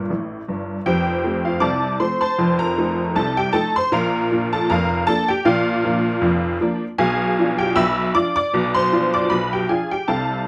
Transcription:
Already playing: G1 G2 A#2 D4 A#4
0.10 A1 A2
0.48 G1 G2
0.86 F1 F2 G4 C5 G5
1.24 F3 A3 C4
1.45 F4 F5
1.60 C2 C3 D5 A5 D6
2.00 F3 A3 C4 C5 C6
2.21 C5 A5 C6
2.39 F1 F2
2.59 A#4 A#5
2.78 F3 A3 D#4
3.15 C2 C3 A4 A5
3.37 G4 G5
3.53 F3 A3 D#4 A4 A5
3.76 C5 C6
3.92 A#1 A#2 A#4 F5 A#5
4.32 F3 A#3 D4
4.53 A4 A5
4.70 F1 F2 A#4 F5 A#5
5.07 F3 A#3 D4 A4 A5
5.28 G4 G5
5.45 A#1 A#2 F4 D5 F5
5.85 F3 A#3 D4
6.21 F1 F2
6.61 F3 A#3 D4
6.98 B1 B2 G#4 F5 G#5
7.39 F3 D4 F4
7.59 G4 G5
7.76 B1 B2 E5 B5 E6
8.15 F3 D4 F4 D5 D6
8.36 D5 D6
8.53 B1 B2
8.75 C5 C6
8.93 F3 D4 F4
9.14 D5 D6
9.30 B1 B2 B4 B5
9.53 G4 G5
9.69 F3 D4 F4 G#4 G#5
9.91 G4 G5
10.08 C2 C3 A4 F5 A5

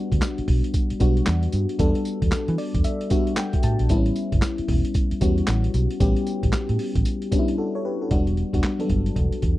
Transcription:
Already playing: G3 B3 D4 F#4
0.12 D2, kick, closed hi-hat
0.22 snare, clap, closed hi-hat, tambourine
0.38 muted fingered electric bass stroke, closed hi-hat
0.48 B1, kick, open hi-hat
0.64 closed hi-hat
0.74 kick, closed hi-hat, tambourine
0.90 muted fingered electric bass stroke, closed hi-hat
1.00 B1 G3 B3 D4 F#4, kick, closed hi-hat, tambourine
1.17 closed hi-hat
1.26 E2, snare, clap, closed hi-hat, tambourine
1.43 closed hi-hat
1.52 G2, closed hi-hat, tambourine
1.69 closed hi-hat
1.79 E2 G3 B3 D4 A4, kick, closed hi-hat, tambourine
1.95 closed hi-hat
2.05 closed hi-hat, tambourine
2.22 E2, kick, closed hi-hat
2.32 muted fingered electric bass stroke, snare, clap, closed hi-hat, tambourine
2.48 E3, closed hi-hat
2.58 D5, open hi-hat
2.74 E2, kick, closed hi-hat
2.84 E5, closed hi-hat, tambourine
3.01 closed hi-hat
3.10 G3 B3 D4 F#4, kick, closed hi-hat, tambourine
3.27 closed hi-hat
3.37 G5, snare, clap, closed hi-hat, tambourine
3.53 kick, closed hi-hat
3.63 A2 A5, closed hi-hat, tambourine
3.79 A#1, closed hi-hat
3.89 A1 G3 B3 C4 E4, kick, closed hi-hat, tambourine
3.97 C#4
4.06 closed hi-hat
4.16 closed hi-hat, tambourine
4.32 G1, kick, closed hi-hat
4.42 snare, clap, closed hi-hat, tambourine
4.58 muted fingered electric bass stroke, closed hi-hat
4.68 E1, kick, open hi-hat
4.85 closed hi-hat
4.94 kick, closed hi-hat, tambourine
5.11 muted fingered electric bass stroke, closed hi-hat
5.21 E2 G3 B3 C#4 F#4, kick, closed hi-hat, tambourine
5.38 closed hi-hat
5.47 A1, snare, clap, closed hi-hat, tambourine
5.64 closed hi-hat
5.74 B1, closed hi-hat, tambourine
5.91 closed hi-hat
6.00 A1 G3 B3 C#4 G4, kick, closed hi-hat, tambourine
6.16 closed hi-hat
6.27 closed hi-hat, tambourine
6.43 A1, kick, closed hi-hat
6.53 muted fingered electric bass stroke, snare, clap, closed hi-hat, tambourine
6.69 A2, closed hi-hat
6.79 open hi-hat
6.95 A1, kick, closed hi-hat
7.05 closed hi-hat, tambourine
7.22 closed hi-hat
7.31 G3 B3 C#4 D4, kick, closed hi-hat, tambourine
7.39 E4
7.48 closed hi-hat
7.58 F#4 A4
7.75 A4 C#5
7.85 G4 B4
8.02 F#4 A4
8.11 E1 G3 B3 D4 F#4, kick, closed hi-hat
8.27 closed hi-hat
8.37 closed hi-hat
8.53 E1 G3 B3 D4 F#4, kick, closed hi-hat
8.63 snare, clap, closed hi-hat
8.79 F#3 B3 D4 A4, closed hi-hat
8.85 G3
8.89 G1, kick, closed hi-hat
9.06 closed hi-hat
9.16 E1, kick, closed hi-hat
9.32 closed hi-hat
9.42 E2, kick, closed hi-hat

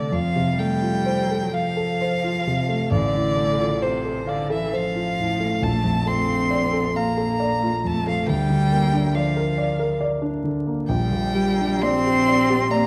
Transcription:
Already playing: C3 D3 A3 A4 C5 D5 A5
0.12 F2 F3 F5
0.36 C3
0.55 G3 G5
0.60 A3
0.82 F4
1.06 C5
1.31 A4
1.52 F3 F5
1.77 A4
2.01 C5
2.24 F4
2.47 C3
2.69 A3
2.91 A1 D3 D5
3.14 A2
3.36 A3
3.59 F4
3.82 C3 C5
4.05 A4
4.26 D3 D5 F5
4.50 E3 A4 E5
4.73 F3 C5 F5
4.96 F4
5.20 A2
5.40 A3
5.62 A#1 A3 A5
5.84 F2
6.06 A3 C4 C6
6.28 F4
6.50 D5
6.73 A4
6.96 A#3 F5 A#5
7.17 A4
7.40 D5
7.63 F4
7.84 F2 A3 A5
8.07 F3 A3 F5
8.28 D2 G3 G5
8.50 D3
8.72 A#3
8.93 D4
9.15 F3 D5 F5
9.37 A#4
9.58 D5
9.79 A#4
10.01 D5
10.22 D4
10.44 D3
10.67 A#3
10.87 A#1 G3 G5
11.11 A#2
11.35 G3
11.60 D4
11.82 C4 D5 C6
12.06 G4
12.28 D5
12.50 G4
12.71 A#3 D5 A#5

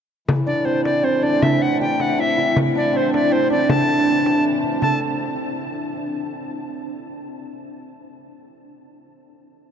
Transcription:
0.28 A2 E3, frame drum
0.46 D4 D5
0.65 C4 C5, frame drum
0.84 D5, frame drum
1.03 C4 C5
1.22 D4 D5, frame drum
1.41 E4 E5, frame drum
1.62 F#5
1.81 G4 G5, frame drum
2.00 F#5, frame drum
2.18 E4 E5
2.37 E4, frame drum
2.56 frame drum
2.75 D4 D5
2.93 C4 C5, frame drum
3.13 D4 D5, frame drum
3.31 C4 C5
3.50 D4 D5, frame drum
3.69 A4 A5, frame drum
4.08 frame drum
4.26 frame drum
4.64 frame drum
4.82 A4 A5, frame drum

